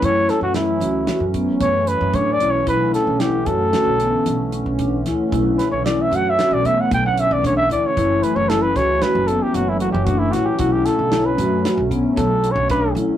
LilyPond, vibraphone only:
\new Staff \with { instrumentName = "Vibraphone" } { \time 5/4 \key b \minor \tempo 4 = 114 e'4 e'8 fis'8 fis'8 b4 cis'8 d'8 e'8 | e'4 e'8 fis'8 fis'8 b4 cis'8 d'8 e'8 | e'4 e'8 fis'8 fis'8 b4 cis'8 d'8 e'8 | e'4 e'8 fis'8 fis'8 b4 cis'8 d'8 e'8 |
e'4 e'8 fis'8 fis'8 b4 cis'8 d'8 e'8 | }